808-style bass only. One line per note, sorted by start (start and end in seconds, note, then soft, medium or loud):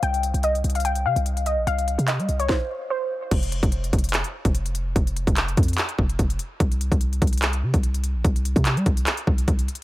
0.03 0.33 C2 loud
0.34 0.63 C2 loud
0.64 1.07 C2 loud
1.05 1.16 C3 medium
1.16 1.59 C2 loud
1.57 1.66 A#1 medium
1.67 1.97 C2 loud
1.98 2.20 C3 loud
2.19 2.28 G3 loud
2.29 2.48 C2 loud
3.31 3.62 F1 loud
3.63 3.92 F1 loud
3.93 4.23 F1 loud
4.45 4.94 F1 loud
4.96 5.26 F1 loud
5.27 5.56 F1 loud
5.57 5.77 F2 loud
5.99 6.18 F1 loud
6.19 6.39 F1 loud
6.60 6.90 C2 loud
6.92 7.21 C2 loud
7.22 7.64 C2 loud
7.63 7.73 C3 loud
7.74 8.16 C2 loud
8.15 8.24 A#1 loud
8.24 8.55 C2 loud
8.56 8.78 C3 loud
8.76 8.86 G3 loud
8.86 9.06 C2 loud
9.27 9.47 C2 loud
9.48 9.68 C2 loud